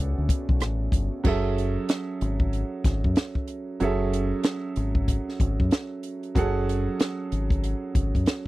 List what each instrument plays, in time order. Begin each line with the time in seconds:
Already playing: fingered electric bass C#2, analog synth pad B2 B3 F#4, upright piano A3 C#4 D4 F#4 G#4 A4 D5 E5 F#5
0.18 fingered electric bass D2
0.29 kick, closed hi-hat
0.49 fingered electric bass B1, kick
0.60 fingered electric bass A1, cross-stick, closed hi-hat
0.92 fingered electric bass G1, kick, closed hi-hat
1.24 fingered electric bass F#1, upright piano F#3 C#4 G#4 A4, kick, crash
1.28 upright piano E5
1.58 closed hi-hat
1.89 snare, closed hi-hat
2.21 fingered electric bass G#1, closed hi-hat
2.40 kick
2.53 closed hi-hat
2.84 fingered electric bass G#1, kick, snare, closed hi-hat
3.04 fingered electric bass F#2, kick
3.16 snare, closed hi-hat
3.35 kick
3.48 closed hi-hat
3.80 fingered electric bass F#1, upright piano F#3 C#4 G#4 A4, closed hi-hat
3.84 upright piano E5
4.13 closed hi-hat
4.43 snare, closed hi-hat
4.76 fingered electric bass G#1, closed hi-hat
4.95 kick
5.08 kick, closed hi-hat
5.29 snare
5.40 fingered electric bass G#1, kick, closed hi-hat
5.60 fingered electric bass F#2, kick
5.71 snare, closed hi-hat
6.03 closed hi-hat
6.23 closed hi-hat
6.35 fingered electric bass F#1, upright piano F#3 C#4 G#4 A4 F#5, kick, closed hi-hat
6.69 closed hi-hat
7.00 snare, closed hi-hat
7.32 fingered electric bass G#1, closed hi-hat
7.50 kick, closed hi-hat
7.64 closed hi-hat
7.95 fingered electric bass G#1, kick, closed hi-hat
8.15 fingered electric bass F#2, kick, closed hi-hat
8.26 snare, closed hi-hat